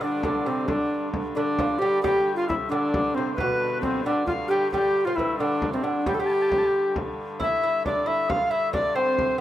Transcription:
Already playing: hurdy-gurdy G2 D3
0.01 lute D3, recorder D4, shawm D5, frame drum
0.23 lute D3, shawm D5, frame drum
0.46 lute C3, recorder C4
0.68 lute D3, recorder D4, shawm D5, frame drum
1.14 frame drum
1.35 lute D3, recorder D4, shawm D5, frame drum
1.59 lute F3, frame drum
1.79 lute G3, recorder G4, frame drum
2.02 hurdy-gurdy G2 D3, lute G3, recorder G4, shawm G5, frame drum
2.28 frame drum
2.35 recorder F4, shawm F5
2.48 recorder E4, shawm E5, frame drum
2.69 lute D3, recorder D4, shawm D5, frame drum
2.94 frame drum
3.15 lute C3, recorder C4, shawm C5
3.31 recorder B4, shawm C5
3.38 lute B2, shawm B4, frame drum
3.61 frame drum
3.81 recorder C4, shawm C5, frame drum
4.04 lute D3, recorder D4, shawm D5
4.26 recorder F4, shawm F5, frame drum
4.48 lute G3, recorder G4, shawm G5
4.71 lute G3, recorder G4, shawm G5, frame drum
4.95 frame drum
5.05 lute F3, recorder F4, shawm F5
5.16 lute E3, recorder E4, shawm E5, frame drum
5.34 shawm E5
5.38 lute D3, recorder D4, shawm D5, frame drum
5.62 frame drum
5.72 lute C3, recorder C4
5.83 lute D3, recorder D4
6.06 lute G3, recorder G4, shawm G5, frame drum
6.14 recorder A4
6.20 lute G3, recorder G4, shawm G5
6.26 shawm A5
6.34 shawm G5
6.42 shawm A5
6.50 shawm G5, frame drum
6.58 shawm A5
6.67 shawm G5
6.75 frame drum
6.96 frame drum
7.18 frame drum
7.40 hurdy-gurdy G2 D3, lute E4, recorder E5, shawm E6, frame drum
7.63 lute E4
7.85 lute D4, recorder D5, shawm D6, frame drum
8.06 lute E4, recorder E5, shawm E6, frame drum
8.29 lute F4, shawm F5, recorder F5, frame drum
8.46 recorder F5
8.50 lute E4, recorder E5, shawm E6
8.73 lute D4, recorder D5, shawm D6, frame drum
8.95 lute C4, recorder C5, shawm C6
9.19 frame drum

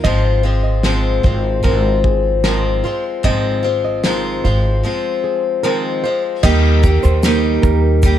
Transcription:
0.04 upright bass G#1, steel-string acoustic guitar G#2 D#3 F3 G#3 C4 F4, nylon-string guitar D#5, kick
0.43 steel-string acoustic guitar F3 G#3 C4 F4
0.63 nylon-string guitar D#5
0.83 steel-string acoustic guitar G#2 D#3 F3 G#3 C4 F4, snare
1.23 upright bass G#1, steel-string acoustic guitar F3 G#3 C4 F4, nylon-string guitar C5, kick
1.63 upright bass G#1, steel-string acoustic guitar F3 G#3 C4 F4, nylon-string guitar A#4, kick
2.04 nylon-string guitar G#4, kick
2.44 steel-string acoustic guitar G#2 D#3 F3 G#3 C4 F4, nylon-string guitar A#4, snare
2.84 steel-string acoustic guitar F3 G#3 C4 F4, nylon-string guitar C5
3.23 upright bass G#1, steel-string acoustic guitar G#2 D#3 F3 G#3 C4 F4, nylon-string guitar D#5, kick
3.63 steel-string acoustic guitar F3 G#3 C4 F4
3.85 nylon-string guitar D#5
4.03 steel-string acoustic guitar G#2 D#3 F3 G#3 C4 F4, snare
4.44 upright bass G#1, steel-string acoustic guitar F3 G#3 C4 F4, nylon-string guitar C5
4.83 steel-string acoustic guitar F3 G#3 C4 F4
5.24 nylon-string guitar G#4
5.63 steel-string acoustic guitar G#2 D#3 F3 G#3 C4 F4, nylon-string guitar A#4
6.04 steel-string acoustic guitar F3 G#3 C4 F4, nylon-string guitar C5
6.43 upright bass D#2, steel-string acoustic guitar D#3 G3 A#3 D#4 G4, nylon-string guitar D#5, kick, crash
6.83 steel-string acoustic guitar A#3 D#4 G4, kick, shaker
7.03 upright bass D#2, nylon-string guitar C5, shaker
7.23 steel-string acoustic guitar D#3 G3 A#3 D#4 G4, snare, shaker
7.62 upright bass D#2, nylon-string guitar A#4, kick, shaker
8.02 steel-string acoustic guitar G3 A#3 D#4 G4, kick, shaker

